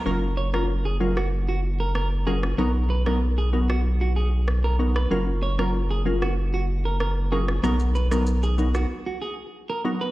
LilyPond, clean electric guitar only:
\new Staff \with { instrumentName = "Clean electric guitar" } { \time 4/4 \key fis \major \tempo 4 = 95 ais'16 r16 cis''16 ais'16 r16 gis'16 r16 fis'16 r16 fis'16 r16 ais'16 ais'16 r16 gis'16 r16 | ais'16 r16 b'16 ais'16 r16 gis'16 r16 fis'16 r16 fis'16 gis'16 r8 ais'16 r16 b'16 | ais'16 r16 cis''16 ais'16 r16 gis'16 r16 fis'16 r16 fis'16 r16 ais'16 ais'16 r16 gis'16 r16 | ais'16 r16 b'16 ais'16 r16 gis'16 r16 fis'16 r16 fis'16 gis'16 r8 ais'16 r16 b'16 | }